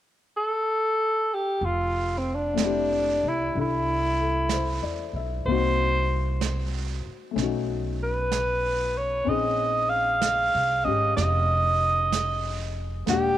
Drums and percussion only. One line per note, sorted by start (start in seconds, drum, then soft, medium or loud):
1.61 brush sweep soft
2.57 brush sweep soft
2.57 snare soft
2.57 hi-hat pedal soft
3.54 brush sweep soft
4.49 brush sweep soft
4.49 snare soft
4.49 hi-hat pedal soft
5.45 brush sweep soft
6.41 brush sweep soft
6.41 snare soft
6.41 hi-hat pedal soft
7.38 brush sweep soft
7.38 snare soft
8.32 brush sweep soft
8.32 snare soft
8.32 hi-hat pedal medium
9.27 brush sweep soft
10.21 brush sweep soft
10.21 snare soft
10.21 hi-hat pedal soft
11.17 brush sweep soft
11.17 snare soft
12.12 brush sweep soft
12.12 snare soft
12.12 hi-hat pedal medium
13.07 brush sweep soft
13.07 snare soft